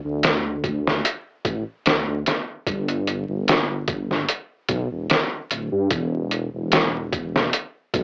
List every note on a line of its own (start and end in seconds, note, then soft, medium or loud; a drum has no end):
0.05 1.01 D2 medium
0.23 snare loud
0.23 closed hi-hat medium
0.64 kick medium
0.64 closed hi-hat medium
0.87 snare medium
1.05 closed hi-hat medium
1.45 1.64 A1 medium
1.45 kick medium
1.45 closed hi-hat medium
1.86 2.05 D2 medium
1.86 snare loud
1.86 closed hi-hat medium
2.07 2.24 D2 loud
2.26 snare soft
2.26 closed hi-hat medium
2.66 3.24 G1 medium
2.66 kick loud
2.66 closed hi-hat medium
2.88 closed hi-hat soft
3.07 closed hi-hat medium
3.29 4.25 G1 medium
3.48 snare loud
3.48 closed hi-hat medium
3.88 kick medium
3.88 closed hi-hat medium
4.11 snare soft
4.29 closed hi-hat medium
4.69 4.88 B1 loud
4.69 kick medium
4.69 closed hi-hat medium
4.91 5.08 E1 medium
5.10 snare loud
5.10 closed hi-hat medium
5.51 5.69 D1 loud
5.51 closed hi-hat medium
5.72 5.89 G2 loud
5.90 6.49 E1 loud
5.90 kick loud
5.90 closed hi-hat medium
6.31 closed hi-hat medium
6.54 7.50 E1 medium
6.72 snare loud
6.72 closed hi-hat medium
7.12 kick medium
7.12 closed hi-hat medium
7.36 snare medium
7.53 closed hi-hat medium
7.94 8.03 B1 medium
7.94 kick medium
7.94 closed hi-hat medium